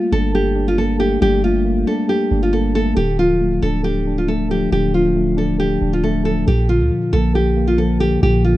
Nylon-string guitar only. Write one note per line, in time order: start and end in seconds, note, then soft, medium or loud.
0.12 0.32 A4 loud
0.35 0.66 G4 medium
0.68 0.77 F4 medium
0.78 0.98 A4 medium
1.00 1.19 G4 medium
1.22 1.41 G4 loud
1.44 1.85 F4 medium
1.87 2.07 A4 medium
2.09 2.41 G4 medium
2.43 2.52 F4 medium
2.53 2.73 A4 medium
2.75 2.95 A4 medium
2.97 3.16 G4 loud
3.19 3.60 F4 medium
3.62 3.82 A4 medium
3.84 4.16 G4 medium
4.18 4.27 F4 medium
4.28 4.48 A4 medium
4.51 4.70 G4 medium
4.72 4.92 G4 loud
4.94 5.35 F4 medium
5.38 5.57 A4 medium
5.60 5.91 G4 medium
5.93 6.02 F4 medium
6.04 6.23 A4 medium
6.25 6.45 A4 medium
6.48 6.67 G4 loud
6.69 7.10 F4 medium
7.13 7.32 A4 loud
7.35 7.67 G4 medium
7.68 7.77 F4 medium
7.78 7.98 A4 medium
8.00 8.20 G4 medium
8.23 8.42 G4 loud
8.44 8.57 F4 medium